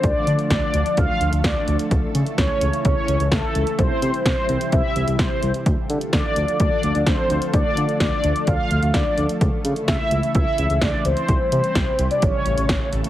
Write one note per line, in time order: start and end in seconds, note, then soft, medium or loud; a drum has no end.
0.00 0.12 D2 loud
0.00 1.87 D3 medium
0.00 1.87 F3 medium
0.00 3.75 A3 medium
0.00 1.87 F4 medium
0.00 3.75 A4 medium
0.00 0.49 D5 loud
0.00 kick loud
0.00 closed hi-hat medium
0.27 0.36 D3 medium
0.27 closed hi-hat medium
0.39 closed hi-hat soft
0.50 0.59 D2 loud
0.50 0.99 D5 loud
0.50 kick loud
0.50 snare loud
0.50 closed hi-hat medium
0.74 0.83 D2 loud
0.74 closed hi-hat medium
0.86 closed hi-hat medium
0.97 1.06 D2 loud
0.97 1.41 F5 loud
0.97 kick loud
0.97 closed hi-hat medium
1.21 1.30 D2 medium
1.21 closed hi-hat medium
1.32 1.41 D2 loud
1.32 closed hi-hat medium
1.44 1.53 D2 loud
1.44 1.77 D5 medium
1.44 kick loud
1.44 snare loud
1.44 closed hi-hat medium
1.68 1.76 D2 medium
1.68 closed hi-hat medium
1.79 closed hi-hat medium
1.91 2.00 C#2 loud
1.91 3.77 C#3 medium
1.91 5.62 E3 medium
1.91 5.62 E4 medium
1.91 kick loud
1.91 closed hi-hat medium
2.15 2.23 C#3 loud
2.15 closed hi-hat medium
2.26 closed hi-hat soft
2.38 2.47 C#2 loud
2.38 2.84 C#5 medium
2.38 kick loud
2.38 snare loud
2.38 closed hi-hat medium
2.61 2.70 C#2 loud
2.61 closed hi-hat medium
2.73 closed hi-hat medium
2.85 2.94 C#2 loud
2.85 3.29 C#5 loud
2.85 kick loud
2.85 closed hi-hat medium
3.08 3.17 C#2 loud
3.08 closed hi-hat medium
3.20 3.29 C#2 loud
3.20 closed hi-hat medium
3.32 3.40 C#2 loud
3.32 3.80 A4 medium
3.32 kick loud
3.32 snare loud
3.32 closed hi-hat medium
3.55 3.64 C#2 medium
3.55 closed hi-hat medium
3.67 closed hi-hat medium
3.79 3.87 C2 loud
3.79 5.64 C3 medium
3.79 5.64 G3 medium
3.79 5.64 G4 medium
3.79 4.24 C5 loud
3.79 kick loud
3.79 closed hi-hat medium
4.02 4.11 C3 loud
4.02 closed hi-hat medium
4.14 closed hi-hat soft
4.26 4.34 C2 loud
4.26 4.74 C5 loud
4.26 kick loud
4.26 snare loud
4.26 closed hi-hat medium
4.49 4.58 C2 loud
4.49 closed hi-hat medium
4.61 closed hi-hat medium
4.72 4.81 C2 loud
4.72 5.16 E5 loud
4.72 kick loud
4.72 closed hi-hat medium
4.96 5.05 C2 medium
4.96 closed hi-hat medium
5.07 5.16 C2 loud
5.07 closed hi-hat medium
5.19 5.28 C2 loud
5.19 5.52 C5 medium
5.19 kick loud
5.19 snare loud
5.19 closed hi-hat medium
5.43 5.52 C2 medium
5.43 closed hi-hat medium
5.54 closed hi-hat medium
5.66 5.75 D2 loud
5.66 9.37 D3 medium
5.66 9.37 F3 medium
5.66 11.25 A3 medium
5.66 9.37 F4 medium
5.66 9.37 A4 medium
5.66 kick loud
5.66 closed hi-hat medium
5.90 5.98 D3 loud
5.90 closed hi-hat medium
6.01 closed hi-hat soft
6.13 6.22 D2 loud
6.13 6.58 D5 medium
6.13 kick loud
6.13 snare loud
6.13 closed hi-hat medium
6.36 6.45 D2 loud
6.36 closed hi-hat medium
6.48 closed hi-hat medium
6.60 6.69 D2 loud
6.60 7.08 D5 loud
6.60 kick loud
6.60 closed hi-hat medium
6.83 6.92 D2 medium
6.83 closed hi-hat medium
6.95 7.04 D2 loud
6.95 closed hi-hat medium
7.06 7.15 D2 loud
7.06 7.55 C5 medium
7.06 kick loud
7.06 snare loud
7.06 closed hi-hat medium
7.30 7.39 D2 loud
7.30 closed hi-hat medium
7.42 closed hi-hat medium
7.53 7.62 D2 loud
7.53 7.97 D5 medium
7.53 kick loud
7.53 closed hi-hat medium
7.77 7.86 D3 medium
7.77 closed hi-hat medium
7.89 closed hi-hat soft
8.00 8.09 D2 loud
8.00 8.49 D5 loud
8.00 kick loud
8.00 snare loud
8.00 closed hi-hat medium
8.24 8.33 D2 loud
8.24 closed hi-hat medium
8.36 closed hi-hat medium
8.47 8.56 D2 loud
8.47 8.96 F5 loud
8.47 kick loud
8.47 closed hi-hat medium
8.71 8.80 D2 loud
8.71 closed hi-hat medium
8.83 8.91 D2 loud
8.83 closed hi-hat medium
8.94 9.03 D2 loud
8.94 9.27 D5 medium
8.94 kick loud
8.94 snare loud
8.94 closed hi-hat medium
9.18 9.27 D2 medium
9.18 closed hi-hat medium
9.29 closed hi-hat medium
9.41 9.50 C#2 loud
9.41 11.27 C#3 medium
9.41 13.10 E3 medium
9.41 13.10 E4 medium
9.41 11.27 A4 medium
9.41 kick loud
9.41 closed hi-hat medium
9.65 9.73 C#3 loud
9.65 closed hi-hat medium
9.76 closed hi-hat soft
9.88 9.97 C#2 loud
9.88 10.32 E5 loud
9.88 kick loud
9.88 snare loud
9.88 closed hi-hat medium
10.11 10.20 C#2 loud
10.11 closed hi-hat medium
10.23 closed hi-hat medium
10.35 10.44 C#2 loud
10.35 10.83 E5 loud
10.35 kick loud
10.35 closed hi-hat medium
10.58 10.67 C#2 loud
10.58 closed hi-hat medium
10.70 10.79 C#2 medium
10.70 closed hi-hat medium
10.81 10.90 C#2 loud
10.81 11.03 D5 loud
10.81 kick loud
10.81 snare loud
10.81 closed hi-hat medium
11.05 11.14 C#2 medium
11.05 11.51 C5 medium
11.05 closed hi-hat medium
11.17 closed hi-hat medium
11.28 11.37 C2 loud
11.28 12.21 C3 medium
11.28 12.21 G3 medium
11.28 12.21 G4 medium
11.28 kick loud
11.28 closed hi-hat medium
11.52 11.61 C3 loud
11.52 12.07 C5 medium
11.52 closed hi-hat medium
11.64 closed hi-hat soft
11.75 11.84 C2 loud
11.75 kick loud
11.75 snare loud
11.75 closed hi-hat medium
11.99 12.08 C2 loud
11.99 closed hi-hat medium
12.11 12.23 D5 medium
12.11 closed hi-hat medium
12.22 12.31 A1 loud
12.22 13.10 C#3 medium
12.22 13.10 A3 medium
12.22 13.10 A4 medium
12.22 12.89 C#5 medium
12.22 kick loud
12.22 closed hi-hat medium
12.46 12.55 A1 loud
12.46 closed hi-hat medium
12.58 12.66 A1 loud
12.58 closed hi-hat medium
12.69 12.78 A1 medium
12.69 kick loud
12.69 snare loud
12.69 closed hi-hat medium
12.93 13.02 A1 loud
12.93 closed hi-hat medium
13.04 closed hi-hat medium